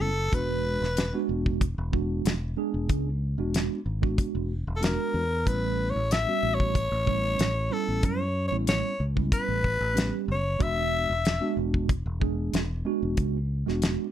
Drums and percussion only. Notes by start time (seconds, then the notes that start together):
0.33 kick, closed hi-hat
0.84 snare
0.97 snare, closed hi-hat
1.46 kick
1.61 kick, closed hi-hat
1.93 kick
2.25 snare, closed hi-hat
2.89 kick, closed hi-hat
3.54 snare, closed hi-hat
4.03 kick
4.18 kick, closed hi-hat
4.83 snare, closed hi-hat
5.47 kick, closed hi-hat
6.11 snare, closed hi-hat
6.60 kick
6.75 kick, closed hi-hat
7.07 kick
7.39 snare, closed hi-hat
8.03 kick, closed hi-hat
8.67 snare, closed hi-hat
9.17 kick
9.32 kick, closed hi-hat
9.64 kick
9.97 snare, closed hi-hat
10.60 kick, closed hi-hat
11.25 snare, closed hi-hat
11.74 kick
11.89 kick, closed hi-hat
12.21 kick
12.54 snare, closed hi-hat
13.17 kick, closed hi-hat
13.68 snare
13.82 snare, closed hi-hat